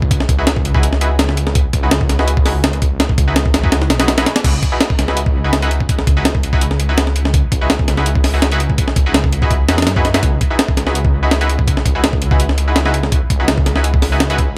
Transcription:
Already playing: C#2
0.02 kick
0.11 kick, closed hi-hat
0.20 snare
0.29 C#2, kick, closed hi-hat
0.38 D#4 E4 F#4 G#4 B4
0.47 snare, closed hi-hat
0.56 kick
0.65 C#2, closed hi-hat
0.75 D#4 E4 F#4 G#4 B4, kick
0.83 closed hi-hat
0.93 snare
1.01 D#4 E4 F#4 G#4 B4, closed hi-hat
1.19 snare, closed hi-hat
1.29 snare
1.37 closed hi-hat
1.47 snare
1.55 kick, closed hi-hat
1.73 C#2, kick, closed hi-hat
1.83 D#4 E4 F#4 G#4 B4
1.91 snare, closed hi-hat
2.01 kick
2.09 C#2, snare, closed hi-hat
2.19 D#4 E4 F#4 G#4 B4, snare
2.28 closed hi-hat
2.37 kick
2.46 D#4 E4 F#4 G#4 B4, snare, open hi-hat
2.64 snare, closed hi-hat
2.73 closed hi-hat
2.82 kick, closed hi-hat
3.00 snare, closed hi-hat
3.09 kick
3.18 C#2, kick, closed hi-hat
3.28 D#4 E4 F#4 G#4 B4
3.36 snare, closed hi-hat
3.46 kick
3.54 C#2, snare, closed hi-hat
3.64 D#4 E4 F#4 G#4 B4, kick
3.72 snare, closed hi-hat
3.82 snare
3.90 B1, snare, closed hi-hat
4.00 D#4 E4 F#4 G#4 B4, snare, closed hi-hat
4.08 snare, closed hi-hat
4.18 D#4 E4 F#4 G#4 B4, snare, closed hi-hat
4.26 snare, closed hi-hat
4.36 snare, closed hi-hat
4.44 C#2, kick, closed hi-hat, crash
4.63 kick, closed hi-hat
4.72 D#4 E4 F#4 G#4 B4
4.81 snare, closed hi-hat
4.90 kick
4.99 C#2, snare, closed hi-hat
5.08 D#4 E4 F#4 G#4 B4, snare
5.17 closed hi-hat
5.26 kick
5.44 D#4 E4 F#4 G#4 B4
5.53 snare, closed hi-hat
5.62 D#4 E4 F#4 G#4 B4, closed hi-hat
5.71 closed hi-hat
5.80 kick
5.89 kick, closed hi-hat
5.99 snare
6.07 C#2, kick, closed hi-hat
6.17 D#4 E4 F#4 G#4 B4
6.25 snare, closed hi-hat
6.35 kick
6.43 C#2, closed hi-hat
6.53 D#4 E4 F#4 G#4 B4, kick
6.61 closed hi-hat
6.71 snare
6.80 closed hi-hat
6.89 D#4 E4 F#4 G#4 B4
6.98 snare, closed hi-hat
7.07 snare
7.16 closed hi-hat
7.25 snare
7.34 kick, closed hi-hat
7.52 C#2, kick, closed hi-hat
7.61 D#4 E4 F#4 G#4 B4
7.70 snare, closed hi-hat
7.79 kick
7.88 C#2, snare, closed hi-hat
7.97 D#4 E4 F#4 G#4 B4, snare
8.06 closed hi-hat
8.15 kick
8.24 snare, open hi-hat
8.34 D#4 E4 F#4 G#4 B4
8.42 snare, closed hi-hat
8.52 D#4 E4 F#4 G#4 B4, closed hi-hat
8.60 closed hi-hat
8.70 kick
8.78 kick, closed hi-hat
8.88 snare
8.96 C#2, kick, closed hi-hat
9.06 D#4 E4 F#4 G#4 B4
9.14 snare, closed hi-hat
9.24 kick
9.33 C#2, closed hi-hat
9.42 D#4 E4 F#4 G#4 B4, kick
9.51 kick, closed hi-hat
9.69 E2 D#4 E4 F#4 G#4 B4, snare, closed hi-hat
9.78 snare, closed hi-hat
9.82 snare, closed hi-hat
9.87 F#2, snare, closed hi-hat
9.96 D#4 E4 F#4 G#4 B4, kick
10.05 snare, closed hi-hat
10.14 D#4 E4 F#4 G#4 B4, snare, closed hi-hat
10.23 C#2, kick, closed hi-hat
10.41 kick, closed hi-hat
10.50 D#4 E4 F#4 G#4 B4
10.59 snare, closed hi-hat
10.68 kick
10.77 C#2, snare, closed hi-hat
10.87 D#4 E4 F#4 G#4 B4, snare
10.95 closed hi-hat
11.05 kick
11.23 D#4 E4 F#4 G#4 B4
11.31 snare, closed hi-hat
11.41 D#4 E4 F#4 G#4 B4, closed hi-hat
11.49 closed hi-hat
11.59 kick
11.67 kick, closed hi-hat
11.77 snare
11.86 C#2, kick, closed hi-hat
11.95 D#4 E4 F#4 G#4 B4
12.04 snare, closed hi-hat
12.13 kick
12.22 C#2, closed hi-hat
12.31 D#4 E4 F#4 G#4 B4, kick
12.40 closed hi-hat
12.49 snare
12.58 closed hi-hat
12.68 D#4 E4 F#4 G#4 B4
12.76 snare, closed hi-hat
12.85 D#4 E4 F#4 G#4 B4, snare
12.94 closed hi-hat
13.03 snare
13.12 kick, closed hi-hat
13.30 C#2, kick, closed hi-hat
13.40 D#4 E4 F#4 G#4 B4
13.48 snare, closed hi-hat
13.58 kick
13.66 C#2, snare, closed hi-hat
13.76 D#4 E4 F#4 G#4 B4, snare
13.84 closed hi-hat
13.94 kick
14.02 snare, open hi-hat
14.12 D#4 E4 F#4 G#4 B4
14.20 snare, closed hi-hat
14.30 D#4 E4 F#4 G#4 B4, closed hi-hat
14.38 kick, closed hi-hat

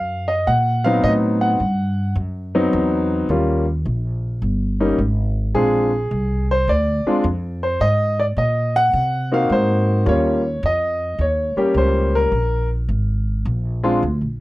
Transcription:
Already playing: F#2 F5
0.28 D#5
0.47 A#2 F#5
0.84 F#3 B3 C4 D#4 F5
1.03 A2 D#5
1.41 F#5
1.60 G2
2.16 F#2
2.55 F#3 B3 C4 D#4
2.73 E2
3.29 D#2 G3 A#3 C#4 F4
3.85 A#1
4.42 G1
4.80 G3 A#3 C#4 D#4
4.99 G#1
5.55 A#1 G#3 C4 D4 F4 G#4
6.11 C2
6.51 C5
6.68 D2 D5
7.06 G#3 C4 D4 F4, muted upright bass stroke
7.24 F2
7.63 C5
7.80 G#2 D#5
8.20 D5
8.37 A#2 D#5
8.76 F#5
8.93 C3
9.32 A#3 C4 D#4 F#4 F5
9.49 G#2 C5
10.06 D#2 G3 A#3 C#4 F4 C#5
10.63 F2 D#5
11.19 D#2 C#5
11.56 G3 A#3 C#4 G4, muted upright bass stroke
11.74 C#2 C5
12.15 A#4
12.32 A#1
12.89 G#1
13.45 A#1
13.83 G#3 C4 D4 F4
14.03 D2
14.21 A#1

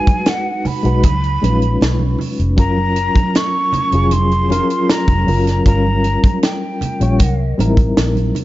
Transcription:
Already playing: G#3 D#4 F#4 B4 G#5
0.07 muted fingered electric bass stroke, kick, closed hi-hat, high conga
0.26 F#5, snare, closed hi-hat, muted conga
0.65 B5, muted fingered electric bass stroke, open hi-hat, muted conga, low conga
0.83 B1 G#3 D#4 F#4 B4, closed hi-hat
1.03 C#2, kick, closed hi-hat, high conga
1.24 closed hi-hat
1.42 A#1 G#3 C#4 D#4 B4, closed hi-hat, high conga
1.50 F4
1.62 closed hi-hat
1.81 B1 C#4, snare, closed hi-hat, muted conga
1.99 high conga
2.19 open hi-hat, low conga
2.39 F1, closed hi-hat
2.57 F#1 F#3 C#4 F4 A#4 A#5, kick, closed hi-hat, muted conga
2.77 high conga
2.96 closed hi-hat
3.15 muted fingered electric bass stroke, kick, closed hi-hat, high conga
3.34 C#4 C#6, snare, closed hi-hat, muted conga
3.73 muted fingered electric bass stroke, closed hi-hat, muted conga, low conga
3.92 F1 F#3 C#4 F4 G#4, closed hi-hat
4.11 C6, closed hi-hat, high conga
4.31 closed hi-hat
4.49 F#3 C#4 F4 A#4, closed hi-hat, muted conga, high conga
4.70 closed hi-hat
4.89 A#5, snare, closed hi-hat
5.07 F1, kick, closed hi-hat, high conga
5.26 F#1 F#3 C#4 F4 A#4, open hi-hat, low conga
5.47 snare, closed hi-hat
5.66 G1 G3 C#4 F4 A#4 A#5, kick, closed hi-hat, muted conga
5.87 high conga
6.04 closed hi-hat, muted conga
6.24 muted fingered electric bass stroke, kick, closed hi-hat, high conga
6.43 G5, snare, closed hi-hat
6.81 muted fingered electric bass stroke, closed hi-hat, low conga
7.00 A#1 G3 C#4 F4 C#5, closed hi-hat
7.19 C2 A#4, kick, closed hi-hat, muted conga, high conga
7.58 A1 G3 C4 D#4 A#4, closed hi-hat, muted conga, high conga
7.66 E4
7.77 kick, closed hi-hat
7.97 A#1, snare, closed hi-hat, muted conga
8.15 closed hi-hat, high conga
8.35 closed hi-hat, muted conga, low conga

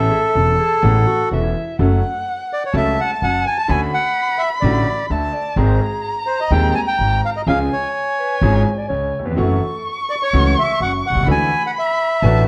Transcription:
Already playing: A4 E5
0.10 G#4
0.21 A4
0.35 E1 E2 E3 B3 C#4 A4 A5
0.59 G#4
0.83 A1 A2 E3 B3 C#4 A4 F#5
1.06 F#4
1.31 E1 E2 E3 B3 C#4 A4 E5
1.43 E4
1.79 F#1 F#2 F#3 A3 C#4 A4 F#5
2.53 D5
2.66 C#5
2.74 C#2 C#3 F#3 A3 C#4 A4 E5 A5
3.01 F#5
3.22 F#1 F#2 F#3 F#5
3.46 G#5
3.58 A5
3.68 D2 D3 A3 C#4 F#4 G#5 B5
3.94 F#5
4.38 E5
4.61 A1 A2 D3 A3 C#4 F#4 D5
5.10 D2 D3 E5 A5
5.34 D5
5.56 G#1 G#2 D#3 G#3 C4 G#4 C5 A#5
5.81 G#4
6.27 C5
6.40 D#5
6.51 D#1 D#2 D#3 G#3 C4 G#4 G5
6.75 G#5
6.87 G5
6.99 G#1 G#2
7.25 F5
7.36 D#5
7.46 C#2 C#3 F3 G#3 C#4 G#4 F5 G#5
7.72 C#5
7.94 G#5
8.19 B4
8.41 G#1 G#2 F3 G#3 C#4 G#4 C#5
8.78 D5
8.88 C#2 C#3 C#5
9.19 D#2
9.25 E2 B4
9.31 F2
9.36 F#1 F#2 E3 F#3 A3 C#4 F#4 A4 C#6
10.10 D5
10.23 C#5
10.33 C#2 C#3 E3 A3 C#4 F#4
10.59 E5
10.80 F#1 F#2 F#3 F#5
11.07 B1 F#5
11.11 B1 C2
11.15 C2
11.21 C#2
11.27 D2 D3 E3 A3 D4 F#4 B5
11.31 G#5
11.67 F#5
11.79 E5
12.22 A1 A2 E3 A3 D4 F#4 B4 A5

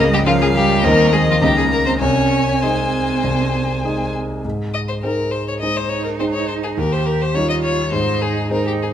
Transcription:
Already playing: C#2 C#3 A#3 D#5
0.11 G3 G4
0.25 F3 C#4 F4 A#4 F5
0.40 G#3 G#4
0.54 G3 G4
0.83 D#2 D#3 A#3 C4 D#4 A#4 D#5
1.12 G#3 G#4
1.27 F3 F4
1.42 C#2 C#3 G3 A#3 D#4 G4 D#5 A#5
1.56 G#3 G#4
1.71 A#3 A#4
1.86 C4 C5
2.00 C2 C3 C#4 C#5 G#5
2.61 G#3 C4 D#4 C5 D#5
3.23 C2 C3
3.84 G#3 D#4 D#5
4.45 G#2
4.74 D#5
4.88 C5
5.02 G#3 C4 D#4 A#4 C5
5.31 C5
5.48 C#5
5.60 G#3 D#4 C5 D#5
5.77 C5
5.89 C#5
6.04 A#4
6.19 G#3 C4 D#4 C5
6.33 C#5
6.48 C5
6.63 G#4
6.77 D#2 G4 A#4
6.92 C5
7.06 A#4
7.22 C5
7.35 G3 C#4 D#4 F4 C#5
7.49 D#5
7.62 C#5
7.92 G#2 D#4 C5
8.22 G#4
8.50 G#3 C4 D#4 A#4 C5
8.67 G4
8.82 G#4

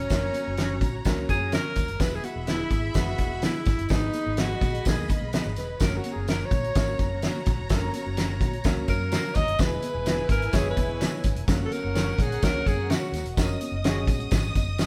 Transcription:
Already playing: C#4 F#4 C#5 A#5
0.10 F#1 F#3 A#3 C#4 A#4, kick, snare, closed hi-hat, tambourine
0.33 closed hi-hat, tambourine, muted conga, high conga
0.47 F#1
0.57 C#4 F#4 A#4 C#5, snare, closed hi-hat, tambourine, muted conga
0.81 A#1, kick, closed hi-hat, tambourine, muted conga, high conga, low conga
1.05 C#2 F#3 A#3 C#4 A#4, kick, snare, closed hi-hat, tambourine
1.28 F#2 G#4, kick, closed hi-hat, tambourine, high conga
1.52 C#4 F#4 A#4 C#5, snare, closed hi-hat, tambourine, muted conga, high conga
1.65 high conga
1.75 D#2, kick, closed hi-hat, tambourine, muted conga, low conga
1.88 F#1, closed hi-hat
2.00 E1 G#3 B3 E4 G#4 B4 E5 B5, kick, snare, closed hi-hat, tambourine, muted conga
2.15 G#4
2.23 F#4, closed hi-hat, tambourine, high conga
2.36 E1
2.47 B3 E4 G#4 B4, snare, closed hi-hat, tambourine
2.70 G#1, kick, closed hi-hat, tambourine, muted conga, high conga, low conga
2.94 F#1 G#3 B3 E4 F#4 B4, kick, snare, closed hi-hat, tambourine
3.18 E1, kick, closed hi-hat, tambourine, muted conga, high conga
3.42 B3 E4 G#4 B4, snare, closed hi-hat, tambourine, muted conga, high conga
3.55 high conga
3.65 G#1, kick, snare, closed hi-hat, tambourine, low conga
3.79 F#1, closed hi-hat
3.89 G#1 G#3 B3 D#4 G#4 B4 D#5 B5, kick, snare, closed hi-hat, tambourine
3.93 D#4
4.13 closed hi-hat, tambourine, muted conga, high conga
4.26 G#1
4.37 B3 D#4 F#4 G#4 B4, snare, closed hi-hat, tambourine, muted conga
4.61 A#1, kick, closed hi-hat, tambourine, muted conga, high conga, low conga
4.74 closed hi-hat
4.85 B1 G#3 A#3 B3 D#4 G#4, kick, snare, closed hi-hat, tambourine
4.98 D#2
5.08 kick, closed hi-hat, tambourine, high conga
5.22 B1
5.33 B3 D#4 G#4 B4, snare, closed hi-hat, tambourine, high conga
5.45 G#1, high conga
5.56 E1 B4, snare, closed hi-hat, tambourine, low conga
5.80 F#1 F#3 A#3 C#4 F#4 A#4 C#5 A#5, kick, snare, closed hi-hat, tambourine, muted conga
5.97 F#4
6.04 closed hi-hat, tambourine, muted conga, high conga
6.13 F#1 G#4
6.27 A#3 C#4 F#4 A#4, snare, closed hi-hat, tambourine
6.46 C#5
6.51 A#1, kick, closed hi-hat, tambourine, muted conga, high conga, low conga
6.64 closed hi-hat
6.75 G#1 F#3 A#3 C#4 A#4, kick, snare, closed hi-hat, tambourine
6.99 F#1, kick, closed hi-hat, tambourine, high conga
7.22 A#3 C#4 F#4 A#4, snare, closed hi-hat, tambourine, muted conga, high conga
7.36 high conga
7.46 A#1, kick, snare, closed hi-hat, tambourine, muted conga, low conga
7.59 E1
7.69 F#1 F#3 A#3 C#4 A4, kick, snare, closed hi-hat, tambourine, muted conga
7.76 A#4
7.94 closed hi-hat, tambourine, high conga
8.06 F#1
8.17 A#3 C#4 F#4 A#4, snare, closed hi-hat, tambourine
8.40 A#1, kick, closed hi-hat, tambourine, muted conga, high conga, low conga
8.53 closed hi-hat
8.64 C#2 F#3 A#3 C#4 A#4, kick, snare, closed hi-hat, tambourine
8.88 F#2 A#4, kick, closed hi-hat, tambourine, muted conga, high conga
9.12 A#3 C#4 F#4 A#4, snare, closed hi-hat, tambourine, high conga
9.25 high conga
9.34 D#2 D#5, kick, snare, closed hi-hat, tambourine, low conga
9.48 F#1, closed hi-hat
9.59 E1 G#3 B3 E4 B4 G#5, kick, snare, closed hi-hat, tambourine, muted conga
9.82 closed hi-hat, tambourine, high conga
9.95 E1
10.06 B3 E4 G#4 B4, snare, closed hi-hat, tambourine
10.29 G#1 A#4, kick, closed hi-hat, tambourine, muted conga, high conga, low conga
10.42 closed hi-hat
10.53 F#1 G#3 B3 E4 G#4 C#5, kick, snare, closed hi-hat, tambourine
10.71 B4
10.77 E1, kick, closed hi-hat, tambourine, muted conga, high conga
11.01 B3 E4 G#4 B4, snare, closed hi-hat, tambourine, high conga
11.13 high conga
11.24 G#1, kick, closed hi-hat, tambourine, low conga
11.36 E1, closed hi-hat
11.47 F#1 F#3 A#3 C#4 A#4 F#5, kick, snare, closed hi-hat, tambourine
11.65 A4
11.72 A#4, closed hi-hat, tambourine, high conga
11.84 F#1
11.95 C#4 F#4 A#4 C#5, snare, closed hi-hat, tambourine, muted conga
12.07 low conga
12.18 A#1 G#4, kick, closed hi-hat, tambourine, muted conga, high conga, low conga
12.32 closed hi-hat
12.42 C#2 F#3 A#3 C#4 A#4 C#5, kick, snare, closed hi-hat, tambourine
12.66 F#2 G#4, kick, closed hi-hat, tambourine, high conga
12.90 C#4 F#4 A#4 C#5, snare, closed hi-hat, tambourine, muted conga, high conga
13.03 high conga
13.12 D#2, snare, closed hi-hat, tambourine, muted conga, low conga
13.24 E1, closed hi-hat
13.37 F#1 C#4 F#4 A#4 D#5 D#6, kick, snare, closed hi-hat, tambourine
13.61 closed hi-hat, tambourine, muted conga, high conga
13.72 F#1
13.84 C#4 F#4 G#4 A#4 C#5, snare, closed hi-hat, tambourine, muted conga
13.97 low conga
14.07 A#1, kick, closed hi-hat, tambourine, high conga, low conga
14.20 closed hi-hat
14.31 G#1, kick, snare, closed hi-hat, tambourine
14.55 F#1, kick, closed hi-hat, tambourine, high conga
14.78 C#4 F#4 A#4 C#5, snare, closed hi-hat, tambourine, high conga

